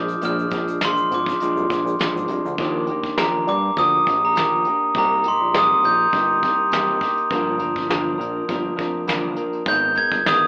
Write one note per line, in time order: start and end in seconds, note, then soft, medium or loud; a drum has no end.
0.00 0.16 A#1 medium
0.00 0.22 F3 soft
0.00 0.22 G#3 medium
0.00 0.22 D4 medium
0.00 0.20 D6 medium
0.08 closed hi-hat medium
0.08 shaker soft
0.21 0.46 A#1 loud
0.21 0.52 A#2 medium
0.21 0.52 F3 medium
0.21 0.51 G#3 medium
0.21 0.50 D4 medium
0.21 0.84 F6 medium
0.21 closed hi-hat medium
0.21 shaker medium
0.39 shaker medium
0.50 0.99 A#1 loud
0.50 0.80 F3 soft
0.50 0.81 G#3 medium
0.50 0.81 D4 medium
0.50 kick medium
0.50 closed hi-hat medium
0.50 shaker soft
0.68 closed hi-hat medium
0.68 shaker medium
0.81 1.10 A#2 medium
0.81 1.11 F3 medium
0.81 1.11 G#3 medium
0.81 1.11 D4 medium
0.81 1.11 C6 medium
0.81 snare loud
0.81 closed hi-hat loud
0.81 shaker medium
0.97 shaker soft
1.11 1.34 G#1 medium
1.11 1.40 F3 soft
1.11 1.41 G#3 medium
1.11 1.41 D4 medium
1.11 1.97 D6 medium
1.11 closed hi-hat medium
1.11 shaker soft
1.26 kick medium
1.26 shaker soft
1.40 1.70 A#2 medium
1.40 1.70 F3 medium
1.40 1.71 G#3 medium
1.40 1.68 D4 medium
1.40 closed hi-hat medium
1.40 shaker medium
1.57 1.67 C2 medium
1.57 shaker soft
1.70 1.83 A#1 medium
1.70 1.99 F3 soft
1.70 2.00 G#3 medium
1.70 1.99 D4 medium
1.70 kick medium
1.70 closed hi-hat medium
1.70 shaker soft
1.85 1.96 A#1 medium
1.85 shaker soft
1.99 2.29 A#2 medium
1.99 2.29 F3 medium
1.99 2.29 G#3 medium
1.99 2.28 D4 medium
1.99 snare loud
1.99 closed hi-hat medium
1.99 shaker medium
2.15 2.26 G#1 medium
2.15 shaker soft
2.28 2.42 C2 medium
2.28 2.58 F3 medium
2.28 2.59 G#3 medium
2.28 2.59 D4 medium
2.28 closed hi-hat medium
2.28 shaker soft
2.45 2.56 D2 medium
2.45 shaker soft
2.58 3.43 D#2 loud
2.58 2.88 D#3 medium
2.58 2.88 F3 loud
2.58 2.89 A#3 medium
2.58 2.89 D4 medium
2.58 2.88 G4 loud
2.58 kick loud
2.58 closed hi-hat medium
2.87 3.19 D4 soft
2.87 3.18 G4 medium
2.87 closed hi-hat medium
2.91 3.18 A#3 medium
3.04 kick medium
3.18 3.48 D#3 medium
3.18 3.48 F3 medium
3.18 3.48 A#3 medium
3.18 3.48 D4 medium
3.18 3.47 G4 medium
3.18 3.48 A#5 medium
3.18 snare loud
3.18 closed hi-hat medium
3.47 3.71 G2 medium
3.47 3.77 A#3 soft
3.47 3.78 D4 soft
3.47 3.77 G4 medium
3.47 3.78 D6 medium
3.47 closed hi-hat medium
3.77 4.00 D2 loud
3.77 4.06 F3 medium
3.77 4.07 A#3 medium
3.77 4.07 D4 medium
3.77 4.06 G4 medium
3.77 4.25 D#6 loud
3.77 kick medium
3.77 closed hi-hat medium
4.07 4.54 A#1 loud
4.07 4.36 A#3 soft
4.07 4.36 D4 soft
4.07 4.36 G4 medium
4.07 kick medium
4.07 closed hi-hat medium
4.25 4.51 A#5 medium
4.36 4.65 D#3 medium
4.36 4.65 F3 medium
4.36 4.66 A#3 medium
4.36 4.66 D4 medium
4.36 4.65 G4 medium
4.36 snare loud
4.36 closed hi-hat medium
4.65 4.96 A#3 medium
4.65 4.96 D4 medium
4.65 4.95 G4 medium
4.65 closed hi-hat medium
4.95 5.31 C2 loud
4.95 5.25 C3 medium
4.95 5.25 G3 medium
4.95 5.25 A#3 medium
4.95 5.26 D#4 medium
4.95 5.24 G4 medium
4.95 5.27 A#5 medium
4.95 kick loud
4.95 closed hi-hat medium
5.24 5.53 A#3 soft
5.24 5.54 D#4 medium
5.24 5.54 G4 soft
5.24 closed hi-hat medium
5.28 5.56 C6 medium
5.41 5.75 A#1 medium
5.54 5.83 C3 medium
5.54 5.83 G3 medium
5.54 5.83 A#3 medium
5.54 5.84 D#4 medium
5.54 5.82 G4 medium
5.54 5.86 D#6 loud
5.54 snare loud
5.54 closed hi-hat loud
5.83 6.07 A#1 medium
5.83 6.13 A#3 soft
5.83 6.13 D#4 medium
5.83 6.13 G4 medium
5.83 7.28 G6 medium
5.83 closed hi-hat medium
6.13 6.45 G1 medium
6.13 6.42 G3 medium
6.13 6.43 A#3 medium
6.13 6.43 D#4 medium
6.13 6.41 G4 medium
6.13 kick loud
6.13 closed hi-hat medium
6.42 6.90 C2 medium
6.42 6.71 A#3 soft
6.42 6.72 D#4 soft
6.42 6.72 G4 medium
6.42 kick medium
6.42 closed hi-hat medium
6.71 7.01 C3 medium
6.71 7.01 G3 medium
6.71 7.02 A#3 loud
6.71 7.02 D#4 medium
6.71 7.00 G4 loud
6.71 snare loud
6.71 closed hi-hat loud
7.01 7.31 A#3 medium
7.01 7.32 D#4 medium
7.01 7.31 G4 medium
7.01 kick medium
7.01 open hi-hat medium
7.17 closed hi-hat medium
7.31 8.15 G1 loud
7.31 7.60 G2 medium
7.31 7.61 D3 medium
7.31 7.60 F3 medium
7.31 7.60 A#3 loud
7.31 7.59 D4 medium
7.31 7.58 A#4 loud
7.31 kick loud
7.31 closed hi-hat medium
7.59 7.88 F3 medium
7.59 7.88 A#3 medium
7.59 7.89 D4 medium
7.59 7.89 A#4 medium
7.59 closed hi-hat medium
7.76 kick medium
7.89 8.19 G2 medium
7.89 8.19 D3 medium
7.89 8.19 F3 medium
7.89 8.18 A#3 medium
7.89 8.18 D4 medium
7.89 8.17 A#4 loud
7.89 snare loud
7.89 closed hi-hat medium
8.18 8.43 A#1 medium
8.18 8.47 F3 medium
8.18 8.48 A#3 medium
8.18 8.49 D4 medium
8.18 8.48 A#4 medium
8.18 closed hi-hat medium
8.48 8.73 G1 loud
8.48 8.77 F3 medium
8.48 8.77 A#3 medium
8.48 8.76 D4 medium
8.48 8.75 A#4 medium
8.48 kick medium
8.48 closed hi-hat medium
8.76 9.26 F1 medium
8.76 9.06 F3 medium
8.76 9.07 A#3 medium
8.76 9.07 D4 medium
8.76 9.07 A#4 medium
8.76 kick medium
8.76 closed hi-hat medium
9.07 9.37 G2 medium
9.07 9.37 D3 medium
9.07 9.37 F3 medium
9.07 9.36 A#3 medium
9.07 9.36 D4 medium
9.07 9.35 A#4 loud
9.07 snare loud
9.07 closed hi-hat loud
9.36 9.65 F3 soft
9.36 9.66 A#3 medium
9.36 9.66 D4 medium
9.36 9.66 A#4 medium
9.36 closed hi-hat medium
9.53 closed hi-hat medium
9.65 10.03 G#1 loud
9.65 9.96 G#2 medium
9.65 9.96 D#3 medium
9.65 9.96 G#3 medium
9.65 9.96 B3 medium
9.65 9.95 D#4 medium
9.65 9.94 A#4 medium
9.65 9.98 G6 loud
9.65 kick loud
9.65 closed hi-hat medium
9.95 10.24 G#3 soft
9.95 10.24 B3 soft
9.95 10.25 D#4 medium
9.95 10.25 A#4 medium
9.95 10.27 G#6 loud
9.95 closed hi-hat medium
10.12 10.46 G1 medium
10.12 kick medium
10.12 snare soft
10.25 10.47 G#2 medium
10.25 10.47 D#3 medium
10.25 10.47 G#3 medium
10.25 10.47 B3 medium
10.25 10.47 D#4 medium
10.25 10.47 A#4 medium
10.25 10.47 D#6 medium
10.25 snare loud
10.25 closed hi-hat medium